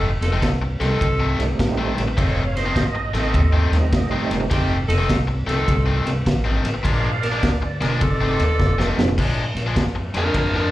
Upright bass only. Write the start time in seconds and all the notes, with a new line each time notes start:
Already playing: F1
0.21 F1
0.43 C2
0.81 C2
1.01 C2
1.39 C2
1.59 A1
1.97 A1
2.18 F1
2.76 A1
3.13 A1
3.34 D#2
3.71 D#2
3.92 F1
4.31 F1
4.51 F1
4.88 F1
5.10 C2
5.47 C2
5.68 C2
6.06 C2
6.27 A1
6.64 A1
6.85 A#1
7.43 D2
7.81 E1
8.01 F1
8.39 D#2
8.59 F1
8.97 F1
9.18 A#1
9.55 A#1
9.76 F2
10.14 F2
10.35 F2